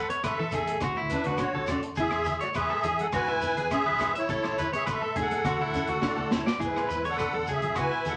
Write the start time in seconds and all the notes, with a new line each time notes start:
0.10 B3 C#5, closed hi-hat
0.23 A1 A4 B4 E5, kick, cross-stick, closed hi-hat, low agogo, shekere
0.39 E3 A4
0.51 A1 G#4, kick, closed hi-hat, low conga, shekere
0.67 A3, closed hi-hat
0.81 D2 F#4, kick, cross-stick, closed hi-hat, high conga, low conga, low agogo, shekere
0.96 E4, high conga
1.09 C#4 D4 B4, closed hi-hat, low conga, shekere
1.24 D2 F#4, closed hi-hat, high conga, shekere
1.38 F#4 C#5, kick, cross-stick, closed hi-hat, low agogo, shekere
1.42 D4
1.53 B1 A4, high conga
1.66 F#4 D5, cross-stick, closed hi-hat, low conga, low agogo, shekere
1.71 C#4
1.83 closed hi-hat
1.95 E2 G#4, kick, closed hi-hat, shekere
1.99 E4 G#4 E5
2.11 E2, cross-stick, low agogo
2.24 muted clean electric guitar stroke, closed hi-hat, high conga, shekere
2.41 A3 F#4 C#5 D5, closed hi-hat
2.54 E2 G#4 B4 E5, kick, cross-stick, closed hi-hat, low agogo, shekere
2.70 G#3 A4
2.83 E3 G#4, closed hi-hat, low conga, shekere
2.99 G#3 A4 F#5, closed hi-hat
3.12 G#2 F#4 B4 G#5, kick, cross-stick, closed hi-hat, high conga, low conga, low agogo, shekere
3.27 E4, high conga
3.41 B3, closed hi-hat, low conga, shekere
3.56 E2 G#4, closed hi-hat, high conga, shekere
3.70 C#4 G#4 E5, kick, cross-stick, closed hi-hat, low agogo, shekere
3.86 B1 B4, high conga
3.98 B3, cross-stick, closed hi-hat, low conga, low agogo, shekere
4.15 E4 C#5 E5, closed hi-hat
4.29 A1 E4 A4, kick, closed hi-hat, shekere
4.43 A1, cross-stick, low agogo
4.58 B4, closed hi-hat, high conga, shekere
4.73 B3 G#4 C#5 E5, closed hi-hat, shekere
4.86 A1 B4, kick, cross-stick, closed hi-hat, low agogo, shekere
4.91 A4 E5
5.02 A3 A4
5.16 A2 G#4, kick, closed hi-hat, low conga, shekere
5.21 A4 F#5
5.31 A3, closed hi-hat
5.44 D2 F#4, kick, cross-stick, closed hi-hat, high conga, low conga, low agogo, shekere
5.59 E4, high conga
5.73 C#4, closed hi-hat, low conga, shekere
5.87 D2 F#4, closed hi-hat, high conga, shekere
6.02 A2 D4, kick, snare, low agogo, shekere
6.07 F#4 D5
6.17 D2 A4, high conga
6.31 A2 C#4 E4, snare, low conga, low agogo, shekere
6.36 C#5
6.46 D5, snare, shekere
6.60 E2 G#2 E4 G#4, kick, closed hi-hat, shekere
6.65 E4 B4
6.76 cross-stick, low agogo
6.88 E2 B4, closed hi-hat, shekere
7.05 D3 A3 C#5, closed hi-hat
7.09 A4 F#5
7.18 B4, kick, cross-stick, closed hi-hat, low agogo, shekere
7.33 E2 G#3 A4
7.46 C#2 C#3 G#4, closed hi-hat, low conga, shekere
7.52 G#4 E5
7.62 B1 G#3, closed hi-hat, high conga
7.75 C#2 E3 F#4 B4, kick, cross-stick, closed hi-hat, low agogo, shekere
7.80 G#5
7.91 E4
8.05 E2 B3 A4 F#5, closed hi-hat, high conga, shekere
8.09 B2